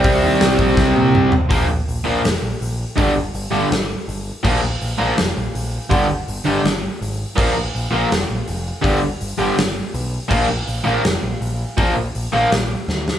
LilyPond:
<<
  \new Staff \with { instrumentName = "Overdriven electric guitar" } { \clef bass \time 4/4 \key bes \mixolydian \tempo 4 = 164 <c g c'>2.~ <c g c'>8 r8 | <bes, f bes>8 r4 <bes, f bes>8 r2 | <g, d g>8 r4 <g, d g>8 r2 | <bes, f bes>8 r4 <bes, f bes>8 r2 |
<g, d g>8 r4 <g, d g>8 r2 | <bes, f bes>8 r4 <bes, f bes>8 r2 | <g, d g>8 r4 <g, d g>8 r2 | <bes, f bes>8 r4 <bes, f bes>8 r2 |
<bes, f bes>8 r4 <bes, f bes>8 r2 | }
  \new Staff \with { instrumentName = "Picked electric bass" } { \clef bass \time 4/4 \key bes \mixolydian c,8 ees,8 c,8 bes,,8 c,8 bes,8 c,8 c8 | bes,,8 bes,,8 bes,,8 bes,,8 f,,8 bes,,8 bes,,4 | g,,8 g,,8 g,,8 g,,8 g,,4 g,,4 | bes,,8 bes,,8 bes,,8 bes,,8 f,,8 bes,,8 bes,,4 |
g,,8 g,,8 g,,8 g,,8 g,,4 aes,,4 | bes,,8 bes,,8 bes,,8 bes,,8 f,,8 bes,,8 f,,4 | g,,8 g,,8 g,,8 g,,8 g,,4 b,,4 | bes,,8 bes,,8 bes,,8 bes,,8 f,,8 bes,,8 bes,,4 |
bes,,8 bes,,8 bes,,8 bes,,8 bes,,4 d,4 | }
  \new DrumStaff \with { instrumentName = "Drums" } \drummode { \time 4/4 <hho bd>4 <hho sn>8 bd8 <bd sn>8 tommh8 toml8 tomfh8 | <hho bd>4 hho4 <hho sn>4 hho4 | <hho bd>4 hho4 <hho sn>4 hho4 | <cymc bd>4 hho4 <hho sn>4 hho4 |
<hho bd>4 hho4 <hho sn>4 hho4 | <cymc bd>4 hho4 <hho sn>4 hho4 | <hho bd>4 hho4 <hho sn>4 hho4 | <cymc bd>4 hho4 <hho sn>4 hho4 |
<hho bd>4 hho4 <hho sn>4 sn8 sn8 | }
>>